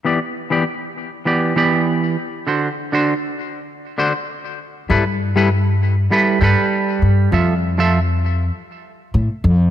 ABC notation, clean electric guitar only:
X:1
M:4/4
L:1/16
Q:1/4=99
K:Em
V:1 name="Clean electric guitar"
[E,B,Gd] z2 [E,B,Gd] z4 [E,B,Gd]2 [E,B,Gd]4 z2 | [D,DFc] z2 [D,DFc] z6 [D,DFc] z4 z | [G,EAB] z2 [G,EAB] z4 [G,EAB]2 [G,EAB]6 | [=F,=FAe] z2 [F,FAe] z12 |]